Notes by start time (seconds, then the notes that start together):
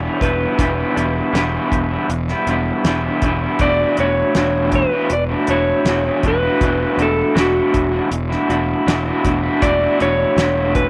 Already playing: D3 E3
0.01 G3 B3 E4
0.21 E1 D3 G3 B3 E4 B4, kick, closed hi-hat
0.39 G3 B3 E4
0.58 E1 D3 E3 G3 B3 E4, kick, closed hi-hat
0.76 G3 B3 E4
0.95 E1 D3 G3 B3 E4, closed hi-hat
1.33 E1 D3 E3 G3 B3 E4, snare, closed hi-hat
1.72 E1, kick, closed hi-hat
1.90 G3 B3 E4
2.09 E1, muted clean electric guitar stroke, closed hi-hat
2.28 G3 B3 E4, snare
2.46 E1 D3 G3 B3 E4, closed hi-hat
2.84 E1 D3 E3 G3 B3 E4, snare, closed hi-hat
3.04 G3 B3 E4
3.22 E1 D3 G3 B3, kick, closed hi-hat
3.26 E4
3.43 G3 B3 E4
3.59 E1 E2 E3 A3 D4 E4 F#4 D5, kick, closed hi-hat
3.79 A3 D4 E4 F#4
3.97 E1 A3 D4 E4 F#4 C#5, closed hi-hat
4.34 E1 E2 E3 A3 D4 E4 F#4, snare, closed hi-hat
4.72 B4, kick, closed hi-hat
4.92 A3 D4 E4 F#4
5.10 E1 D5, muted clean electric guitar stroke, closed hi-hat
5.29 A3 D4 E4 F#4
5.47 E1 A3 D4 E4 F#4 C#5, closed hi-hat
5.85 E1 E2 E3 A3 D4, snare, closed hi-hat
5.89 E4 F#4
6.05 A3 D4 E4 F#4
6.23 E1 A3 D4 F#4, kick, closed hi-hat
6.28 E4 B4
6.43 A3 D4 E4 F#4
6.61 E1 E2 E3 A3 D4 F#4, kick, closed hi-hat
6.65 E4
6.80 A3 D4 E4 F#4
6.97 E1 A3 D4 E4 F#4, closed hi-hat
7.02 A4
7.34 E1 E2 E3 A3 D4 E4 F#4, snare, closed hi-hat
7.40 F#4
7.74 E1, kick, closed hi-hat
7.91 A3 D4 E4 F#4
8.11 E1, muted clean electric guitar stroke, closed hi-hat
8.29 A3 D4 E4 F#4, snare
8.48 E1 A3 D4 E4 F#4, closed hi-hat
8.86 E1 E2 E3 A3 D4 E4 F#4, snare, closed hi-hat
9.05 A3 D4 E4 F#4
9.24 E1 A3 D4 E4 F#4, kick, closed hi-hat
9.42 A3 D4 E4 F#4
9.60 E1 E2 E3 A3 D4 E4 F#4 D5, kick, closed hi-hat
9.79 A3 D4 E4 F#4
9.98 E1 A3 D4 E4 F#4 C#5, closed hi-hat
10.36 E1 E2 E3 A3 D4 E4 F#4, snare, closed hi-hat
10.75 B4, kick, closed hi-hat